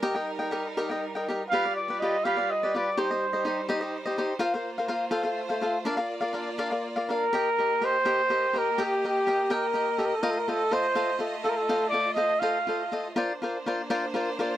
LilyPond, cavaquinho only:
\new Staff \with { instrumentName = "Cavaquinho" } { \time 6/8 \key bes \major \tempo 4. = 82 <g' bes' ees'' g''>16 <bes' ees'' g''>16 r16 <bes' ees'' g''>16 <g' bes' ees'' g''>16 r16 <g' bes' ees'' g''>16 <bes' ees'' g''>16 r16 <bes' ees'' g''>16 <g' bes' ees'' g''>16 r16 | <f' g' b' d''>16 <g' b' d''>16 r16 <g' b' d''>16 <f' g' b' d''>16 r16 <f' g' b' d''>16 <g' b' d''>16 r16 <g' b' d''>16 <f' g' b' d''>16 r16 | <ees' g' c'' ees''>16 <g' c'' ees''>16 r16 <g' c'' ees''>16 <ees' g' c'' ees''>16 r16 <ees' g' c'' ees''>16 <g' c'' ees''>16 r16 <g' c'' ees''>16 <ees' g' c'' ees''>16 r16 | <f' bes' c'' f''>16 <bes' c'' f''>16 r16 <bes' c'' f''>16 <f' bes' c'' f''>16 r16 <f' a' c'' f''>16 <a' c'' f''>16 r16 <a' c'' f''>16 <f' a' c'' f''>16 r16 |
<d' bes' d'' f''>16 <bes' d'' f''>16 r16 <bes' d'' f''>16 <d' bes' d'' f''>16 r16 <d' bes' d'' f''>16 <bes' d'' f''>16 r16 <bes' d'' f''>16 <d' bes' d'' f''>16 r16 | \key ees \major <g' bes' ees'' g''>16 r16 <g' bes' ees'' g''>16 r16 <g' bes' ees'' g''>16 r16 <g' bes' ees'' g''>16 r16 <g' bes' ees'' g''>16 r16 <g' bes' ees'' g''>16 r16 | <g' bes' ees'' g''>16 r16 <g' bes' ees'' g''>16 r16 <g' bes' ees'' g''>16 r16 <g' bes' ees'' g''>16 r16 <g' bes' ees'' g''>16 r16 <g' bes' ees'' g''>16 r16 | <f' a' c'' ees''>16 r16 <f' a' c'' ees''>16 r16 <f' a' c'' ees''>16 r16 <f' a' c'' ees''>16 r16 <f' a' c'' ees''>16 r16 <f' a' c'' ees''>16 r16 |
<f' a' c'' ees''>16 r16 <f' a' c'' ees''>16 r16 <f' a' c'' ees''>16 r16 <f' a' c'' ees''>16 r16 <f' a' c'' ees''>16 r16 <f' a' c'' ees''>16 r16 | <f' bes' c'' d''>16 r16 <f' bes' c'' d''>16 r16 <f' bes' c'' d''>16 r16 <f' bes' c'' d''>16 r16 <f' bes' c'' d''>16 r16 <f' bes' c'' d''>16 r16 | }